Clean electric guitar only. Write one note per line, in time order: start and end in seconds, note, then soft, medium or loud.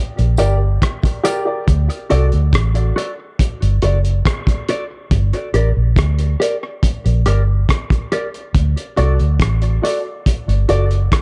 0.38 0.53 G4 medium
0.38 0.54 A#4 loud
0.38 0.54 D5 medium
1.24 1.39 G4 medium
1.24 1.39 A#4 medium
1.24 1.40 D5 medium
2.10 2.25 F#4 medium
2.10 2.25 A4 medium
2.10 2.26 D5 medium
2.96 3.11 F#4 medium
2.96 3.12 A4 medium
2.96 3.12 D5 medium
3.82 3.97 F#4 medium
3.82 3.98 A4 medium
3.82 3.98 D5 medium
4.69 4.83 F#4 medium
4.69 4.84 A4 medium
4.69 4.84 D5 loud
5.54 5.69 G4 medium
5.54 5.69 A#4 medium
5.54 5.70 D5 medium
6.40 6.55 G4 medium
6.40 6.55 A#4 medium
6.40 6.55 D5 medium
7.26 7.41 G4 medium
7.26 7.41 A#4 medium
7.26 7.42 D5 medium
8.12 8.26 G4 medium
8.12 8.27 A#4 medium
8.12 8.27 D5 medium
8.97 9.12 F#4 medium
8.97 9.13 A4 medium
8.97 9.13 D5 medium
9.84 9.98 F#4 medium
9.84 9.99 A4 medium
9.84 9.99 D5 medium
10.69 10.84 F#4 medium
10.69 10.84 A4 medium
10.69 10.84 D5 loud